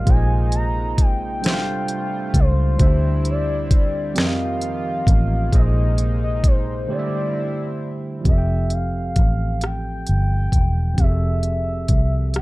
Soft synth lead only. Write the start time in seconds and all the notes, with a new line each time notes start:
Already playing: F5
0.09 G#5
0.55 A#5
1.01 G5
2.39 C5
3.30 D5
3.76 D5
4.21 F5
5.58 D#5
6.24 D#5
6.47 C5
6.92 D5
8.28 E5
8.73 F5
9.64 G5
11.00 E5
12.36 G5